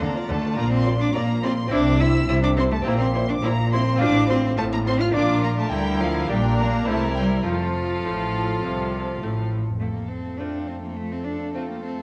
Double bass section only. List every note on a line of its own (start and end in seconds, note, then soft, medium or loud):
0.00 0.08 D2 medium
0.30 0.38 D2 medium
0.58 1.08 A#1 medium
1.15 1.65 A#1 medium
1.72 2.22 C2 medium
2.29 2.79 C2 medium
2.85 3.36 A#1 medium
3.43 3.94 A#1 medium
4.01 4.52 A1 medium
4.58 5.09 A1 medium
5.15 5.69 A#1 medium
5.73 6.29 D2 medium
6.30 6.87 A#1 medium
6.89 7.46 C2 medium
7.47 8.04 F1 medium
8.05 8.63 A1 medium
8.64 9.22 C2 medium
9.23 9.80 A1 medium